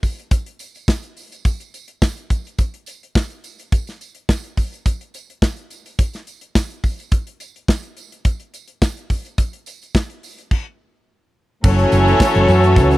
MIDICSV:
0, 0, Header, 1, 6, 480
1, 0, Start_track
1, 0, Key_signature, 3, "minor"
1, 0, Tempo, 566038
1, 265, Time_signature, 4, 2, 24, 8
1, 11004, End_track
2, 0, Start_track
2, 0, Title_t, "String section"
2, 0, Program_c, 0, 48
2, 9873, Note_on_c, 0, 61, 102
2, 9877, Note_on_c, 0, 73, 109
2, 11004, Note_off_c, 0, 61, 0
2, 11004, Note_off_c, 0, 73, 0
2, 11004, End_track
3, 0, Start_track
3, 0, Title_t, "Horn section"
3, 0, Program_c, 1, 61
3, 9870, Note_on_c, 1, 69, 100
3, 9871, Note_on_c, 1, 54, 90
3, 9871, Note_on_c, 1, 64, 90
3, 11004, Note_off_c, 1, 54, 0
3, 11004, Note_off_c, 1, 64, 0
3, 11004, Note_off_c, 1, 69, 0
3, 11004, End_track
4, 0, Start_track
4, 0, Title_t, "French horn section"
4, 0, Program_c, 2, 60
4, 9860, Note_on_c, 2, 57, 84
4, 9861, Note_on_c, 2, 52, 87
4, 9862, Note_on_c, 2, 66, 97
4, 11004, Note_off_c, 2, 52, 0
4, 11004, Note_off_c, 2, 57, 0
4, 11004, Note_off_c, 2, 66, 0
4, 11004, End_track
5, 0, Start_track
5, 0, Title_t, "Fingered electric bass"
5, 0, Program_c, 3, 33
5, 9872, Note_on_c, 3, 30, 100
5, 10038, Note_off_c, 3, 30, 0
5, 10111, Note_on_c, 3, 30, 104
5, 10277, Note_off_c, 3, 30, 0
5, 10478, Note_on_c, 3, 30, 112
5, 10555, Note_off_c, 3, 30, 0
5, 10589, Note_on_c, 3, 42, 97
5, 10826, Note_on_c, 3, 37, 86
5, 10839, Note_off_c, 3, 42, 0
5, 10991, Note_off_c, 3, 37, 0
5, 11004, End_track
6, 0, Start_track
6, 0, Title_t, "Drums"
6, 25, Note_on_c, 9, 36, 83
6, 29, Note_on_c, 9, 54, 52
6, 31, Note_on_c, 9, 46, 65
6, 110, Note_off_c, 9, 36, 0
6, 114, Note_off_c, 9, 54, 0
6, 116, Note_off_c, 9, 46, 0
6, 164, Note_on_c, 9, 42, 42
6, 249, Note_off_c, 9, 42, 0
6, 264, Note_on_c, 9, 42, 85
6, 265, Note_on_c, 9, 36, 105
6, 266, Note_on_c, 9, 54, 48
6, 348, Note_off_c, 9, 42, 0
6, 350, Note_off_c, 9, 36, 0
6, 351, Note_off_c, 9, 54, 0
6, 393, Note_on_c, 9, 42, 42
6, 478, Note_off_c, 9, 42, 0
6, 502, Note_on_c, 9, 54, 59
6, 509, Note_on_c, 9, 42, 67
6, 587, Note_off_c, 9, 54, 0
6, 594, Note_off_c, 9, 42, 0
6, 632, Note_on_c, 9, 54, 28
6, 641, Note_on_c, 9, 42, 35
6, 717, Note_off_c, 9, 54, 0
6, 726, Note_off_c, 9, 42, 0
6, 746, Note_on_c, 9, 36, 118
6, 751, Note_on_c, 9, 54, 83
6, 753, Note_on_c, 9, 38, 97
6, 831, Note_off_c, 9, 36, 0
6, 836, Note_off_c, 9, 54, 0
6, 838, Note_off_c, 9, 38, 0
6, 871, Note_on_c, 9, 42, 40
6, 956, Note_off_c, 9, 42, 0
6, 989, Note_on_c, 9, 46, 54
6, 994, Note_on_c, 9, 54, 53
6, 1074, Note_off_c, 9, 46, 0
6, 1078, Note_off_c, 9, 54, 0
6, 1117, Note_on_c, 9, 54, 27
6, 1122, Note_on_c, 9, 42, 43
6, 1201, Note_off_c, 9, 54, 0
6, 1207, Note_off_c, 9, 42, 0
6, 1230, Note_on_c, 9, 36, 98
6, 1231, Note_on_c, 9, 42, 68
6, 1235, Note_on_c, 9, 54, 57
6, 1315, Note_off_c, 9, 36, 0
6, 1316, Note_off_c, 9, 42, 0
6, 1320, Note_off_c, 9, 54, 0
6, 1358, Note_on_c, 9, 42, 43
6, 1360, Note_on_c, 9, 54, 34
6, 1442, Note_off_c, 9, 42, 0
6, 1445, Note_off_c, 9, 54, 0
6, 1476, Note_on_c, 9, 42, 57
6, 1476, Note_on_c, 9, 54, 49
6, 1561, Note_off_c, 9, 42, 0
6, 1561, Note_off_c, 9, 54, 0
6, 1592, Note_on_c, 9, 42, 47
6, 1677, Note_off_c, 9, 42, 0
6, 1712, Note_on_c, 9, 36, 110
6, 1712, Note_on_c, 9, 54, 92
6, 1714, Note_on_c, 9, 38, 96
6, 1797, Note_off_c, 9, 36, 0
6, 1797, Note_off_c, 9, 54, 0
6, 1799, Note_off_c, 9, 38, 0
6, 1839, Note_on_c, 9, 42, 41
6, 1924, Note_off_c, 9, 42, 0
6, 1952, Note_on_c, 9, 54, 47
6, 1953, Note_on_c, 9, 36, 88
6, 1957, Note_on_c, 9, 42, 63
6, 2037, Note_off_c, 9, 54, 0
6, 2038, Note_off_c, 9, 36, 0
6, 2041, Note_off_c, 9, 42, 0
6, 2078, Note_on_c, 9, 54, 25
6, 2093, Note_on_c, 9, 42, 39
6, 2162, Note_off_c, 9, 54, 0
6, 2178, Note_off_c, 9, 42, 0
6, 2191, Note_on_c, 9, 54, 49
6, 2193, Note_on_c, 9, 42, 73
6, 2194, Note_on_c, 9, 36, 88
6, 2275, Note_off_c, 9, 54, 0
6, 2277, Note_off_c, 9, 42, 0
6, 2278, Note_off_c, 9, 36, 0
6, 2322, Note_on_c, 9, 42, 37
6, 2407, Note_off_c, 9, 42, 0
6, 2428, Note_on_c, 9, 54, 55
6, 2436, Note_on_c, 9, 42, 71
6, 2513, Note_off_c, 9, 54, 0
6, 2521, Note_off_c, 9, 42, 0
6, 2571, Note_on_c, 9, 42, 36
6, 2656, Note_off_c, 9, 42, 0
6, 2674, Note_on_c, 9, 36, 115
6, 2677, Note_on_c, 9, 54, 79
6, 2681, Note_on_c, 9, 38, 94
6, 2759, Note_off_c, 9, 36, 0
6, 2762, Note_off_c, 9, 54, 0
6, 2766, Note_off_c, 9, 38, 0
6, 2800, Note_on_c, 9, 42, 38
6, 2885, Note_off_c, 9, 42, 0
6, 2916, Note_on_c, 9, 42, 54
6, 2918, Note_on_c, 9, 54, 49
6, 3001, Note_off_c, 9, 42, 0
6, 3003, Note_off_c, 9, 54, 0
6, 3039, Note_on_c, 9, 54, 24
6, 3049, Note_on_c, 9, 42, 49
6, 3124, Note_off_c, 9, 54, 0
6, 3134, Note_off_c, 9, 42, 0
6, 3156, Note_on_c, 9, 54, 59
6, 3157, Note_on_c, 9, 36, 105
6, 3158, Note_on_c, 9, 42, 64
6, 3241, Note_off_c, 9, 54, 0
6, 3242, Note_off_c, 9, 36, 0
6, 3243, Note_off_c, 9, 42, 0
6, 3283, Note_on_c, 9, 54, 36
6, 3285, Note_on_c, 9, 42, 40
6, 3297, Note_on_c, 9, 38, 30
6, 3367, Note_off_c, 9, 54, 0
6, 3370, Note_off_c, 9, 42, 0
6, 3382, Note_off_c, 9, 38, 0
6, 3401, Note_on_c, 9, 42, 51
6, 3403, Note_on_c, 9, 54, 46
6, 3485, Note_off_c, 9, 42, 0
6, 3488, Note_off_c, 9, 54, 0
6, 3517, Note_on_c, 9, 42, 41
6, 3601, Note_off_c, 9, 42, 0
6, 3637, Note_on_c, 9, 36, 108
6, 3639, Note_on_c, 9, 38, 107
6, 3647, Note_on_c, 9, 54, 92
6, 3722, Note_off_c, 9, 36, 0
6, 3723, Note_off_c, 9, 38, 0
6, 3732, Note_off_c, 9, 54, 0
6, 3764, Note_on_c, 9, 42, 42
6, 3849, Note_off_c, 9, 42, 0
6, 3879, Note_on_c, 9, 36, 83
6, 3884, Note_on_c, 9, 46, 60
6, 3884, Note_on_c, 9, 54, 50
6, 3964, Note_off_c, 9, 36, 0
6, 3969, Note_off_c, 9, 46, 0
6, 3969, Note_off_c, 9, 54, 0
6, 4008, Note_on_c, 9, 54, 27
6, 4017, Note_on_c, 9, 42, 37
6, 4093, Note_off_c, 9, 54, 0
6, 4102, Note_off_c, 9, 42, 0
6, 4119, Note_on_c, 9, 36, 88
6, 4120, Note_on_c, 9, 42, 73
6, 4121, Note_on_c, 9, 54, 54
6, 4204, Note_off_c, 9, 36, 0
6, 4205, Note_off_c, 9, 42, 0
6, 4205, Note_off_c, 9, 54, 0
6, 4248, Note_on_c, 9, 42, 44
6, 4333, Note_off_c, 9, 42, 0
6, 4359, Note_on_c, 9, 54, 55
6, 4363, Note_on_c, 9, 42, 71
6, 4444, Note_off_c, 9, 54, 0
6, 4448, Note_off_c, 9, 42, 0
6, 4494, Note_on_c, 9, 42, 37
6, 4579, Note_off_c, 9, 42, 0
6, 4597, Note_on_c, 9, 36, 107
6, 4601, Note_on_c, 9, 38, 101
6, 4605, Note_on_c, 9, 54, 80
6, 4682, Note_off_c, 9, 36, 0
6, 4686, Note_off_c, 9, 38, 0
6, 4689, Note_off_c, 9, 54, 0
6, 4721, Note_on_c, 9, 42, 38
6, 4805, Note_off_c, 9, 42, 0
6, 4838, Note_on_c, 9, 42, 57
6, 4842, Note_on_c, 9, 54, 54
6, 4923, Note_off_c, 9, 42, 0
6, 4927, Note_off_c, 9, 54, 0
6, 4965, Note_on_c, 9, 54, 26
6, 4969, Note_on_c, 9, 42, 49
6, 5049, Note_off_c, 9, 54, 0
6, 5054, Note_off_c, 9, 42, 0
6, 5077, Note_on_c, 9, 42, 78
6, 5079, Note_on_c, 9, 36, 101
6, 5079, Note_on_c, 9, 54, 59
6, 5162, Note_off_c, 9, 42, 0
6, 5163, Note_off_c, 9, 36, 0
6, 5164, Note_off_c, 9, 54, 0
6, 5202, Note_on_c, 9, 42, 39
6, 5203, Note_on_c, 9, 54, 39
6, 5214, Note_on_c, 9, 38, 34
6, 5287, Note_off_c, 9, 42, 0
6, 5288, Note_off_c, 9, 54, 0
6, 5299, Note_off_c, 9, 38, 0
6, 5317, Note_on_c, 9, 42, 54
6, 5324, Note_on_c, 9, 54, 47
6, 5402, Note_off_c, 9, 42, 0
6, 5409, Note_off_c, 9, 54, 0
6, 5438, Note_on_c, 9, 42, 49
6, 5523, Note_off_c, 9, 42, 0
6, 5557, Note_on_c, 9, 38, 101
6, 5558, Note_on_c, 9, 36, 107
6, 5562, Note_on_c, 9, 54, 96
6, 5642, Note_off_c, 9, 38, 0
6, 5643, Note_off_c, 9, 36, 0
6, 5646, Note_off_c, 9, 54, 0
6, 5684, Note_on_c, 9, 42, 42
6, 5769, Note_off_c, 9, 42, 0
6, 5798, Note_on_c, 9, 36, 88
6, 5801, Note_on_c, 9, 46, 53
6, 5802, Note_on_c, 9, 54, 48
6, 5883, Note_off_c, 9, 36, 0
6, 5885, Note_off_c, 9, 46, 0
6, 5887, Note_off_c, 9, 54, 0
6, 5926, Note_on_c, 9, 54, 28
6, 5935, Note_on_c, 9, 42, 43
6, 6010, Note_off_c, 9, 54, 0
6, 6020, Note_off_c, 9, 42, 0
6, 6034, Note_on_c, 9, 42, 76
6, 6036, Note_on_c, 9, 36, 106
6, 6037, Note_on_c, 9, 54, 47
6, 6118, Note_off_c, 9, 42, 0
6, 6121, Note_off_c, 9, 36, 0
6, 6122, Note_off_c, 9, 54, 0
6, 6163, Note_on_c, 9, 42, 42
6, 6248, Note_off_c, 9, 42, 0
6, 6276, Note_on_c, 9, 42, 71
6, 6279, Note_on_c, 9, 54, 52
6, 6361, Note_off_c, 9, 42, 0
6, 6364, Note_off_c, 9, 54, 0
6, 6410, Note_on_c, 9, 42, 37
6, 6495, Note_off_c, 9, 42, 0
6, 6516, Note_on_c, 9, 36, 100
6, 6522, Note_on_c, 9, 38, 103
6, 6529, Note_on_c, 9, 54, 93
6, 6601, Note_off_c, 9, 36, 0
6, 6606, Note_off_c, 9, 38, 0
6, 6614, Note_off_c, 9, 54, 0
6, 6639, Note_on_c, 9, 42, 42
6, 6724, Note_off_c, 9, 42, 0
6, 6756, Note_on_c, 9, 42, 58
6, 6767, Note_on_c, 9, 54, 52
6, 6841, Note_off_c, 9, 42, 0
6, 6852, Note_off_c, 9, 54, 0
6, 6888, Note_on_c, 9, 42, 49
6, 6973, Note_off_c, 9, 42, 0
6, 6995, Note_on_c, 9, 42, 76
6, 6996, Note_on_c, 9, 36, 104
6, 7002, Note_on_c, 9, 54, 58
6, 7079, Note_off_c, 9, 42, 0
6, 7081, Note_off_c, 9, 36, 0
6, 7086, Note_off_c, 9, 54, 0
6, 7120, Note_on_c, 9, 42, 39
6, 7205, Note_off_c, 9, 42, 0
6, 7239, Note_on_c, 9, 42, 55
6, 7245, Note_on_c, 9, 54, 52
6, 7324, Note_off_c, 9, 42, 0
6, 7330, Note_off_c, 9, 54, 0
6, 7357, Note_on_c, 9, 42, 43
6, 7442, Note_off_c, 9, 42, 0
6, 7477, Note_on_c, 9, 36, 112
6, 7480, Note_on_c, 9, 38, 109
6, 7481, Note_on_c, 9, 54, 102
6, 7562, Note_off_c, 9, 36, 0
6, 7565, Note_off_c, 9, 38, 0
6, 7565, Note_off_c, 9, 54, 0
6, 7606, Note_on_c, 9, 42, 45
6, 7691, Note_off_c, 9, 42, 0
6, 7717, Note_on_c, 9, 36, 81
6, 7718, Note_on_c, 9, 54, 46
6, 7723, Note_on_c, 9, 46, 58
6, 7802, Note_off_c, 9, 36, 0
6, 7803, Note_off_c, 9, 54, 0
6, 7807, Note_off_c, 9, 46, 0
6, 7842, Note_on_c, 9, 54, 25
6, 7855, Note_on_c, 9, 42, 43
6, 7927, Note_off_c, 9, 54, 0
6, 7940, Note_off_c, 9, 42, 0
6, 7954, Note_on_c, 9, 54, 54
6, 7955, Note_on_c, 9, 42, 78
6, 7956, Note_on_c, 9, 36, 94
6, 8039, Note_off_c, 9, 54, 0
6, 8040, Note_off_c, 9, 36, 0
6, 8040, Note_off_c, 9, 42, 0
6, 8082, Note_on_c, 9, 42, 43
6, 8167, Note_off_c, 9, 42, 0
6, 8193, Note_on_c, 9, 54, 53
6, 8201, Note_on_c, 9, 42, 70
6, 8278, Note_off_c, 9, 54, 0
6, 8286, Note_off_c, 9, 42, 0
6, 8324, Note_on_c, 9, 54, 30
6, 8332, Note_on_c, 9, 42, 39
6, 8409, Note_off_c, 9, 54, 0
6, 8417, Note_off_c, 9, 42, 0
6, 8435, Note_on_c, 9, 36, 106
6, 8440, Note_on_c, 9, 54, 81
6, 8442, Note_on_c, 9, 38, 110
6, 8520, Note_off_c, 9, 36, 0
6, 8525, Note_off_c, 9, 54, 0
6, 8526, Note_off_c, 9, 38, 0
6, 8563, Note_on_c, 9, 42, 42
6, 8648, Note_off_c, 9, 42, 0
6, 8677, Note_on_c, 9, 46, 55
6, 8682, Note_on_c, 9, 54, 50
6, 8762, Note_off_c, 9, 46, 0
6, 8767, Note_off_c, 9, 54, 0
6, 8806, Note_on_c, 9, 42, 47
6, 8891, Note_off_c, 9, 42, 0
6, 8913, Note_on_c, 9, 49, 79
6, 8914, Note_on_c, 9, 36, 91
6, 8998, Note_off_c, 9, 49, 0
6, 8999, Note_off_c, 9, 36, 0
6, 9871, Note_on_c, 9, 36, 121
6, 9872, Note_on_c, 9, 49, 109
6, 9873, Note_on_c, 9, 54, 60
6, 9956, Note_off_c, 9, 36, 0
6, 9957, Note_off_c, 9, 49, 0
6, 9958, Note_off_c, 9, 54, 0
6, 9996, Note_on_c, 9, 42, 50
6, 10081, Note_off_c, 9, 42, 0
6, 10107, Note_on_c, 9, 54, 68
6, 10112, Note_on_c, 9, 42, 83
6, 10192, Note_off_c, 9, 54, 0
6, 10197, Note_off_c, 9, 42, 0
6, 10238, Note_on_c, 9, 54, 31
6, 10244, Note_on_c, 9, 42, 40
6, 10322, Note_off_c, 9, 54, 0
6, 10328, Note_off_c, 9, 42, 0
6, 10347, Note_on_c, 9, 36, 127
6, 10353, Note_on_c, 9, 38, 118
6, 10357, Note_on_c, 9, 54, 100
6, 10431, Note_off_c, 9, 36, 0
6, 10438, Note_off_c, 9, 38, 0
6, 10441, Note_off_c, 9, 54, 0
6, 10470, Note_on_c, 9, 42, 48
6, 10555, Note_off_c, 9, 42, 0
6, 10586, Note_on_c, 9, 42, 70
6, 10593, Note_on_c, 9, 54, 61
6, 10671, Note_off_c, 9, 42, 0
6, 10678, Note_off_c, 9, 54, 0
6, 10713, Note_on_c, 9, 54, 35
6, 10718, Note_on_c, 9, 42, 53
6, 10798, Note_off_c, 9, 54, 0
6, 10803, Note_off_c, 9, 42, 0
6, 10824, Note_on_c, 9, 36, 110
6, 10825, Note_on_c, 9, 42, 80
6, 10827, Note_on_c, 9, 54, 64
6, 10908, Note_off_c, 9, 36, 0
6, 10910, Note_off_c, 9, 42, 0
6, 10912, Note_off_c, 9, 54, 0
6, 10949, Note_on_c, 9, 42, 44
6, 10953, Note_on_c, 9, 54, 40
6, 10961, Note_on_c, 9, 38, 35
6, 11004, Note_off_c, 9, 38, 0
6, 11004, Note_off_c, 9, 42, 0
6, 11004, Note_off_c, 9, 54, 0
6, 11004, End_track
0, 0, End_of_file